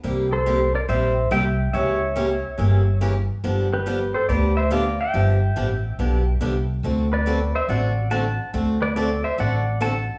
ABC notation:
X:1
M:4/4
L:1/8
Q:"Swing" 1/4=141
K:Ddor
V:1 name="Pedal steel guitar"
z [Ac]2 [_Bd] [ce]2 [eg]2 | [^ce]6 z2 | z [GB]2 [Ac] [Bd] [ce] [df] [eg]- | [eg]6- [eg] z |
z [Bd]2 [ce] [d^f]2 [fa]2 | z [Bd] [Ad] [ce] [d^f]2 [fa]2 |]
V:2 name="Steel-string acoustic guitar"
[C,G,_B,EG] z [C,G,B,EG] z [C,G,B,EG] z [C,G,B,EG] z | [^C,E,^A,^CG] z [C,E,A,CG] z [C,E,A,CG] z [C,E,A,CG] z | [D,F,B,DG] z [D,F,B,DG] z [D,F,B,DG] z [D,F,B,DG] z | [D,F,B,DG] z [D,F,B,DG] z [D,F,B,DG] z [D,F,B,DG] z |
[D,A,C^FA] z [D,A,CFA] z [D,A,CFA] z [D,A,CFA] z | [D,A,C^FA] z [D,A,CFA] z [D,A,CFA] z [D,A,CFA] z |]
V:3 name="Upright bass" clef=bass
C,,4 _B,,,2 C,,2 | ^C,,4 G,,,4 | G,,,4 D,,4 | G,,,2 A,,,2 B,,,2 C,,2 |
D,,4 A,,,4 | D,,4 A,,,4 |]